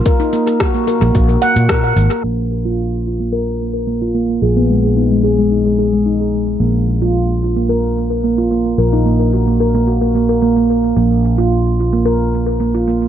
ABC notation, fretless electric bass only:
X:1
M:4/4
L:1/16
Q:1/4=110
K:none
V:1 name="Fretless electric bass" clef=bass
z6 z _B,,, B,,, z2 _B,,3 _A,,, z | _B,,,16 | _B,,,16 | _B,,,16 |
_B,,,16 | _B,,,16 |]